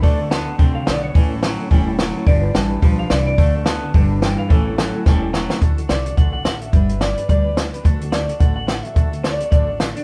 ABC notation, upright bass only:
X:1
M:4/4
L:1/8
Q:"Swing" 1/4=215
K:D
V:1 name="Upright bass" clef=bass
D,,4 =C,,2 B,,,2 | A,,,4 E,,,4 | G,,,2 A,,,2 B,,,2 =C,,2 | D,,4 G,,,4 |
A,,,4 E,,,4 | D,,2 =C,,2 B,,,2 A,,,2 | G,,,4 D,,4 | D,,4 A,,,4 |
D,,4 A,,,4 |]